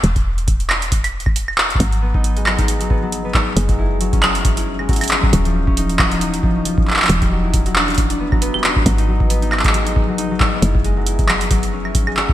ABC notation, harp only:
X:1
M:4/4
L:1/16
Q:"Swing 16ths" 1/4=136
K:Gbmix
V:1 name="Harp"
z16 | G, z C E z A, G, E z G, C G, z C E z | A, G, F z G, D G, z D F z A, G, F z G, | D =F, z D E z G, F, E z F, D F, z D E |
z =G, ^F, =E z F, =D F, z D =B, F, B, G, D z | G, E G, z C E z A, G, E z G, E G, z C | F z A, G, F z G, F G, z D F z A, G, F |]